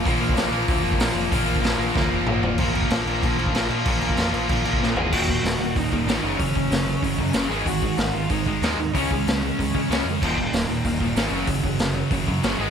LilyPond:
<<
  \new Staff \with { instrumentName = "Lead electric guitar" } { \time 4/4 \key bes \phrygian \tempo 4 = 189 r1 | r1 | r1 | r2. r8 <aes' aes''>8 |
\key ees \minor <ges' ges''>4 <ges' ges''>8 <ges' ges''>8 <ees' ees''>2 | <des' des''>2.~ <des' des''>8 <aes' aes''>8 | <ges' ges''>4 <ges' ges''>8 <f' f''>8 <ees' ees''>2 | <des' des''>2.~ <des' des''>8 r8 |
r1 | r2. r8 <aes' aes''>8 | }
  \new Staff \with { instrumentName = "Distorted electric guitar" } { \clef bass \time 4/4 \key bes \phrygian <bes, f bes>8 <bes, f bes>8 <bes, f bes>8 <bes, f bes>8 <bes, f bes>8 <bes, f bes>8 <bes, f bes>8 <bes, f bes>8 | <bes, f bes>8 <bes, f bes>8 <bes, f bes>8 <bes, f bes>8 <bes, f bes>8 <bes, f bes>8 <bes, f bes>8 <bes, f bes>8 | <bes, f bes>2.~ <bes, f bes>8 <bes, f bes>8 | <bes, f bes>2.~ <bes, f bes>8 <bes, f bes>8 |
\key ees \minor <ees, bes, ees>2~ <ees, bes, ees>8 <ees, bes, ees>8 <ees, bes, ees>8 <ges, des ges>8~ | <ges, des ges>2 <ges, des ges>8 <ges, des ges>4 <aes, ees aes>8~ | <aes, ees aes>2 <aes, ees aes>8 <aes, ees aes>4 r8 | <des aes des'>2~ <des aes des'>8 <des aes des'>8 <des aes des'>4 |
<ees, bes, ees>2~ <ees, bes, ees>8 <ees, bes, ees>8 <ees, bes, ees>8 <ges, des ges>8~ | <ges, des ges>2 <ges, des ges>8 <ges, des ges>4 <aes, ees aes>8 | }
  \new Staff \with { instrumentName = "Overdriven electric guitar" } { \clef bass \time 4/4 \key bes \phrygian <bes, f bes>1 | <bes, f bes>1 | <bes, f bes>8 <bes, f bes>8 <bes, f bes>8 <bes, f bes>8 <bes, f bes>8 <bes, f bes>8 <bes, f bes>8 <bes, f bes>8 | <bes, f bes>8 <bes, f bes>8 <bes, f bes>8 <bes, f bes>8 <bes, f bes>8 <bes, f bes>8 <bes, f bes>8 <bes, f bes>8 |
\key ees \minor <ees, bes, ees>8 <ees, bes,>8 <ees, bes,>8 <ees, bes,>8 <ees, bes,>8 <ees, bes,>8 <ees, bes, ees>8 <ges, des ges>8 | <ges, des>8 <ges, des>8 <ges, des>8 <ges, des>8 <ges, des>8 <ges, des>8 <ges, des ges>8 <aes, ees aes>8 | <aes, ees>8 <aes, ees>8 <aes, ees>8 <aes, ees>8 <aes, ees>8 <aes, ees>8 <aes, ees aes>8 <aes, ees>8 | <des aes des'>8 <des aes>8 <des aes>8 <des aes>8 <des aes>8 <des aes>8 <des aes des'>8 <des aes>8 |
<ees, bes, ees>8 <ees, bes,>8 <ees, bes,>8 <ees, bes,>8 <ees, bes,>8 <ees, bes,>8 <ees, bes, ees>8 <ges, des ges>8 | <ges, des>8 <ges, des>8 <ges, des>8 <ges, des>8 <ges, des>8 <ges, des>8 <ges, des ges>8 <aes, ees aes>8 | }
  \new Staff \with { instrumentName = "Overdriven electric guitar" } { \clef bass \time 4/4 \key bes \phrygian <bes, f bes>4. <bes, f bes>2~ <bes, f bes>8 | <bes, f bes>4. <bes, f bes>2~ <bes, f bes>8 | <bes, f bes>8 <bes, f bes>8 <bes, f bes>8 <bes, f bes>8 <bes, f bes>8 <bes, f bes>8 <bes, f bes>8 <bes, f bes>8 | <bes, f bes>8 <bes, f bes>8 <bes, f bes>8 <bes, f bes>8 <bes, f bes>8 <bes, f bes>8 <bes, f bes>8 <bes, f bes>8 |
\key ees \minor <ees, bes, ees>8 <ees, bes,>8 <ees, bes,>8 <ees, bes,>8 <ees, bes,>8 <ees, bes,>8 <ees, bes, ees>8 <ges, des ges>8 | <ges, des>8 <ges, des>8 <ges, des>8 <ges, des>8 <ges, des>8 <ges, des>8 <ges, des ges>8 <aes, ees aes>8 | <aes, ees>8 <aes, ees>8 <aes, ees>8 <aes, ees>8 <aes, ees>8 <aes, ees>8 <aes, ees aes>8 <aes, ees>8 | <des aes des'>8 <des aes>8 <des aes>8 <des aes>8 <des aes>8 <des aes>8 <des aes des'>8 <des aes>8 |
<ees, bes, ees>8 <ees, bes,>8 <ees, bes,>8 <ees, bes,>8 <ees, bes,>8 <ees, bes,>8 <ees, bes, ees>8 <ges, des ges>8 | <ges, des>8 <ges, des>8 <ges, des>8 <ges, des>8 <ges, des>8 <ges, des>8 <ges, des ges>8 <aes, ees aes>8 | }
  \new Staff \with { instrumentName = "Picked electric bass" } { \clef bass \time 4/4 \key bes \phrygian bes,,8 bes,,8 bes,,8 bes,,8 d,8 f,,8 bes,,8 f,,8 | bes,,8 bes,,8 bes,,8 bes,,8 d,8 f,,8 bes,,8 f,,8 | bes,,8 bes,,8 bes,,8 bes,,8 bes,,8 bes,,8 bes,,8 bes,8 | bes,,8 bes,,8 f,8 bes,,8 bes,,8 bes,,8 bes,,8 aes,,8 |
\key ees \minor ees,,4 ees,,8 ees,,8 ees,,8 ees,,8 aes,,8 ges,,8 | ges,,8 ges,,8 ges,,4 ges,,8 ges,8 ges,,8 aes,,8 | aes,,4 aes,,8 aes,,8 aes,,8 aes,,8 ees,8 ees,8 | des,8 des,8 des,4 des,8 des8 des,8 f,8 |
ees,,4 ees,,8 ees,,8 ees,,8 ees,,8 aes,,8 ges,,8 | ges,,8 ges,,8 ges,,4 ges,,8 ges,8 g,,8 aes,,8 | }
  \new DrumStaff \with { instrumentName = "Drums" } \drummode { \time 4/4 <hho bd>8. bd16 <hho sn>4 <hho bd>8. bd16 <hho sn>4 | <hho bd>8. bd16 <hho sn>4 <bd sn>4 toml8 tomfh8 | <cymc bd>8 cymc16 bd16 <cymc sn>8 cymc8 <cymc bd>8 cymc16 bd16 <cymc sn>8 cymc8 | <cymc bd>8 cymc16 bd16 <cymc sn>8 cymc8 <cymc bd>8 cymc16 bd16 sn8 tomfh8 |
<cymc bd>8 bd8 <hho sn>4 <hho bd>8 bd8 <hho sn>4 | <hho bd>8 bd8 <hho sn>4 <hho bd>8 bd8 <hho sn>4 | <hho bd>8 bd8 <hho sn>4 <hho bd>8 bd8 <hho sn>4 | <hho bd>8 bd8 <hho sn>4 <hho bd>8 bd8 <hho sn>4 |
<cymc bd>8 bd8 <hho sn>4 <hho bd>8 bd8 <hho sn>4 | <hho bd>8 bd8 <hho sn>4 <hho bd>8 bd8 <hho sn>4 | }
>>